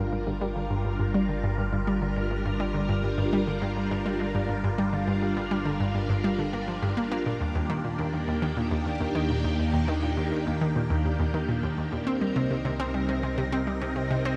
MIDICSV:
0, 0, Header, 1, 4, 480
1, 0, Start_track
1, 0, Key_signature, -2, "minor"
1, 0, Tempo, 582524
1, 343, Time_signature, 4, 2, 24, 8
1, 11837, End_track
2, 0, Start_track
2, 0, Title_t, "String machine"
2, 0, Program_c, 0, 50
2, 0, Note_on_c, 0, 55, 75
2, 0, Note_on_c, 0, 62, 66
2, 0, Note_on_c, 0, 65, 69
2, 0, Note_on_c, 0, 70, 82
2, 6071, Note_off_c, 0, 55, 0
2, 6071, Note_off_c, 0, 65, 0
2, 6071, Note_off_c, 0, 70, 0
2, 6106, Note_on_c, 0, 67, 86
2, 6107, Note_on_c, 0, 51, 77
2, 6107, Note_on_c, 0, 58, 68
2, 9911, Note_off_c, 0, 67, 0
2, 9912, Note_off_c, 0, 51, 0
2, 9912, Note_off_c, 0, 58, 0
2, 9912, Note_off_c, 0, 62, 0
2, 9940, Note_on_c, 0, 48, 76
2, 9940, Note_on_c, 0, 60, 72
2, 9940, Note_on_c, 0, 70, 86
2, 9941, Note_on_c, 0, 63, 69
2, 11837, Note_off_c, 0, 48, 0
2, 11837, Note_off_c, 0, 60, 0
2, 11837, Note_off_c, 0, 63, 0
2, 11837, Note_off_c, 0, 70, 0
2, 11837, End_track
3, 0, Start_track
3, 0, Title_t, "Synth arpeggio sound"
3, 0, Program_c, 1, 84
3, 0, Note_on_c, 1, 43, 95
3, 94, Note_off_c, 1, 43, 0
3, 103, Note_on_c, 1, 43, 75
3, 185, Note_off_c, 1, 43, 0
3, 222, Note_on_c, 1, 43, 91
3, 271, Note_off_c, 1, 43, 0
3, 340, Note_on_c, 1, 55, 97
3, 423, Note_off_c, 1, 55, 0
3, 460, Note_on_c, 1, 50, 74
3, 576, Note_off_c, 1, 50, 0
3, 580, Note_on_c, 1, 43, 99
3, 691, Note_off_c, 1, 43, 0
3, 701, Note_on_c, 1, 43, 67
3, 784, Note_off_c, 1, 43, 0
3, 821, Note_on_c, 1, 43, 90
3, 871, Note_off_c, 1, 43, 0
3, 942, Note_on_c, 1, 55, 99
3, 1024, Note_off_c, 1, 55, 0
3, 1063, Note_on_c, 1, 50, 73
3, 1177, Note_off_c, 1, 50, 0
3, 1183, Note_on_c, 1, 43, 99
3, 1293, Note_off_c, 1, 43, 0
3, 1302, Note_on_c, 1, 43, 83
3, 1384, Note_off_c, 1, 43, 0
3, 1422, Note_on_c, 1, 43, 96
3, 1471, Note_off_c, 1, 43, 0
3, 1543, Note_on_c, 1, 55, 102
3, 1624, Note_off_c, 1, 55, 0
3, 1662, Note_on_c, 1, 50, 75
3, 1776, Note_off_c, 1, 50, 0
3, 1783, Note_on_c, 1, 43, 98
3, 1894, Note_off_c, 1, 43, 0
3, 1904, Note_on_c, 1, 43, 75
3, 1985, Note_off_c, 1, 43, 0
3, 2022, Note_on_c, 1, 43, 100
3, 2071, Note_off_c, 1, 43, 0
3, 2141, Note_on_c, 1, 55, 93
3, 2223, Note_off_c, 1, 55, 0
3, 2261, Note_on_c, 1, 50, 78
3, 2376, Note_off_c, 1, 50, 0
3, 2381, Note_on_c, 1, 43, 98
3, 2492, Note_off_c, 1, 43, 0
3, 2502, Note_on_c, 1, 43, 71
3, 2584, Note_off_c, 1, 43, 0
3, 2619, Note_on_c, 1, 43, 92
3, 2670, Note_off_c, 1, 43, 0
3, 2742, Note_on_c, 1, 55, 96
3, 2824, Note_off_c, 1, 55, 0
3, 2861, Note_on_c, 1, 50, 79
3, 2976, Note_off_c, 1, 50, 0
3, 2983, Note_on_c, 1, 43, 97
3, 3093, Note_off_c, 1, 43, 0
3, 3103, Note_on_c, 1, 43, 71
3, 3184, Note_off_c, 1, 43, 0
3, 3222, Note_on_c, 1, 43, 101
3, 3272, Note_off_c, 1, 43, 0
3, 3343, Note_on_c, 1, 55, 92
3, 3424, Note_off_c, 1, 55, 0
3, 3462, Note_on_c, 1, 50, 75
3, 3576, Note_off_c, 1, 50, 0
3, 3581, Note_on_c, 1, 43, 97
3, 3691, Note_off_c, 1, 43, 0
3, 3701, Note_on_c, 1, 43, 77
3, 3783, Note_off_c, 1, 43, 0
3, 3822, Note_on_c, 1, 43, 97
3, 3871, Note_off_c, 1, 43, 0
3, 3941, Note_on_c, 1, 55, 99
3, 4024, Note_off_c, 1, 55, 0
3, 4061, Note_on_c, 1, 50, 74
3, 4176, Note_off_c, 1, 50, 0
3, 4182, Note_on_c, 1, 43, 98
3, 4292, Note_off_c, 1, 43, 0
3, 4302, Note_on_c, 1, 43, 74
3, 4384, Note_off_c, 1, 43, 0
3, 4422, Note_on_c, 1, 43, 98
3, 4471, Note_off_c, 1, 43, 0
3, 4541, Note_on_c, 1, 55, 96
3, 4624, Note_off_c, 1, 55, 0
3, 4659, Note_on_c, 1, 50, 79
3, 4775, Note_off_c, 1, 50, 0
3, 4779, Note_on_c, 1, 43, 98
3, 4891, Note_off_c, 1, 43, 0
3, 4900, Note_on_c, 1, 43, 73
3, 4983, Note_off_c, 1, 43, 0
3, 5021, Note_on_c, 1, 43, 96
3, 5071, Note_off_c, 1, 43, 0
3, 5143, Note_on_c, 1, 55, 102
3, 5224, Note_off_c, 1, 55, 0
3, 5261, Note_on_c, 1, 50, 72
3, 5376, Note_off_c, 1, 50, 0
3, 5383, Note_on_c, 1, 58, 75
3, 5497, Note_off_c, 1, 58, 0
3, 5503, Note_on_c, 1, 53, 72
3, 5584, Note_off_c, 1, 53, 0
3, 5624, Note_on_c, 1, 43, 94
3, 5705, Note_off_c, 1, 43, 0
3, 5744, Note_on_c, 1, 58, 94
3, 5854, Note_off_c, 1, 58, 0
3, 5864, Note_on_c, 1, 58, 97
3, 5977, Note_off_c, 1, 58, 0
3, 5984, Note_on_c, 1, 46, 73
3, 6065, Note_off_c, 1, 46, 0
3, 6103, Note_on_c, 1, 39, 82
3, 6185, Note_off_c, 1, 39, 0
3, 6223, Note_on_c, 1, 39, 98
3, 6272, Note_off_c, 1, 39, 0
3, 6342, Note_on_c, 1, 51, 97
3, 6424, Note_off_c, 1, 51, 0
3, 6462, Note_on_c, 1, 46, 69
3, 6577, Note_off_c, 1, 46, 0
3, 6580, Note_on_c, 1, 39, 97
3, 6691, Note_off_c, 1, 39, 0
3, 6701, Note_on_c, 1, 39, 73
3, 6783, Note_off_c, 1, 39, 0
3, 6821, Note_on_c, 1, 39, 96
3, 6871, Note_off_c, 1, 39, 0
3, 6940, Note_on_c, 1, 51, 96
3, 7023, Note_off_c, 1, 51, 0
3, 7060, Note_on_c, 1, 46, 81
3, 7175, Note_off_c, 1, 46, 0
3, 7179, Note_on_c, 1, 39, 97
3, 7291, Note_off_c, 1, 39, 0
3, 7301, Note_on_c, 1, 39, 74
3, 7383, Note_off_c, 1, 39, 0
3, 7420, Note_on_c, 1, 39, 91
3, 7470, Note_off_c, 1, 39, 0
3, 7540, Note_on_c, 1, 51, 91
3, 7623, Note_off_c, 1, 51, 0
3, 7663, Note_on_c, 1, 46, 72
3, 7777, Note_off_c, 1, 46, 0
3, 7782, Note_on_c, 1, 39, 103
3, 7896, Note_off_c, 1, 39, 0
3, 7906, Note_on_c, 1, 39, 74
3, 7986, Note_off_c, 1, 39, 0
3, 8022, Note_on_c, 1, 39, 94
3, 8071, Note_off_c, 1, 39, 0
3, 8143, Note_on_c, 1, 51, 99
3, 8224, Note_off_c, 1, 51, 0
3, 8263, Note_on_c, 1, 46, 76
3, 8377, Note_off_c, 1, 46, 0
3, 8382, Note_on_c, 1, 39, 94
3, 8496, Note_off_c, 1, 39, 0
3, 8505, Note_on_c, 1, 39, 75
3, 8585, Note_off_c, 1, 39, 0
3, 8626, Note_on_c, 1, 39, 100
3, 8673, Note_off_c, 1, 39, 0
3, 8746, Note_on_c, 1, 51, 97
3, 8826, Note_off_c, 1, 51, 0
3, 8865, Note_on_c, 1, 46, 75
3, 8978, Note_off_c, 1, 46, 0
3, 8985, Note_on_c, 1, 39, 105
3, 9095, Note_off_c, 1, 39, 0
3, 9105, Note_on_c, 1, 39, 70
3, 9185, Note_off_c, 1, 39, 0
3, 9225, Note_on_c, 1, 39, 100
3, 9273, Note_off_c, 1, 39, 0
3, 9345, Note_on_c, 1, 51, 99
3, 9425, Note_off_c, 1, 51, 0
3, 9465, Note_on_c, 1, 46, 76
3, 9578, Note_off_c, 1, 46, 0
3, 9585, Note_on_c, 1, 39, 98
3, 9696, Note_off_c, 1, 39, 0
3, 9706, Note_on_c, 1, 39, 77
3, 9786, Note_off_c, 1, 39, 0
3, 9824, Note_on_c, 1, 39, 95
3, 9872, Note_off_c, 1, 39, 0
3, 9944, Note_on_c, 1, 60, 99
3, 10025, Note_off_c, 1, 60, 0
3, 10064, Note_on_c, 1, 55, 76
3, 10177, Note_off_c, 1, 55, 0
3, 10184, Note_on_c, 1, 48, 101
3, 10293, Note_off_c, 1, 48, 0
3, 10303, Note_on_c, 1, 48, 75
3, 10384, Note_off_c, 1, 48, 0
3, 10423, Note_on_c, 1, 48, 97
3, 10472, Note_off_c, 1, 48, 0
3, 10544, Note_on_c, 1, 60, 101
3, 10625, Note_off_c, 1, 60, 0
3, 10664, Note_on_c, 1, 55, 73
3, 10777, Note_off_c, 1, 55, 0
3, 10784, Note_on_c, 1, 48, 97
3, 10894, Note_off_c, 1, 48, 0
3, 10904, Note_on_c, 1, 48, 83
3, 10985, Note_off_c, 1, 48, 0
3, 11022, Note_on_c, 1, 48, 104
3, 11072, Note_off_c, 1, 48, 0
3, 11144, Note_on_c, 1, 60, 99
3, 11225, Note_off_c, 1, 60, 0
3, 11264, Note_on_c, 1, 55, 73
3, 11378, Note_off_c, 1, 55, 0
3, 11384, Note_on_c, 1, 48, 101
3, 11493, Note_off_c, 1, 48, 0
3, 11502, Note_on_c, 1, 48, 76
3, 11584, Note_off_c, 1, 48, 0
3, 11623, Note_on_c, 1, 48, 100
3, 11672, Note_off_c, 1, 48, 0
3, 11745, Note_on_c, 1, 60, 99
3, 11825, Note_off_c, 1, 60, 0
3, 11837, End_track
4, 0, Start_track
4, 0, Title_t, "Analog synth bass"
4, 0, Program_c, 2, 38
4, 0, Note_on_c, 2, 31, 83
4, 6078, Note_off_c, 2, 31, 0
4, 6102, Note_on_c, 2, 39, 83
4, 9918, Note_off_c, 2, 39, 0
4, 9943, Note_on_c, 2, 36, 84
4, 11837, Note_off_c, 2, 36, 0
4, 11837, End_track
0, 0, End_of_file